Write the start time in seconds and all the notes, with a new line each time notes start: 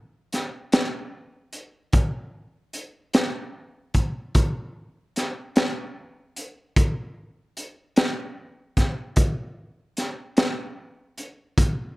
0.33 snare, closed hi-hat
0.72 snare, closed hi-hat
1.53 closed hi-hat
1.93 kick, closed hi-hat
2.73 closed hi-hat
3.13 snare, closed hi-hat
3.94 kick, closed hi-hat
4.35 kick, closed hi-hat
5.16 snare, closed hi-hat
5.56 snare, closed hi-hat
6.36 closed hi-hat
6.76 kick, closed hi-hat
7.57 closed hi-hat
7.96 snare, closed hi-hat
8.77 kick, snare, closed hi-hat
9.16 kick, closed hi-hat
9.97 snare, closed hi-hat
10.37 snare, closed hi-hat
11.18 closed hi-hat
11.58 kick, closed hi-hat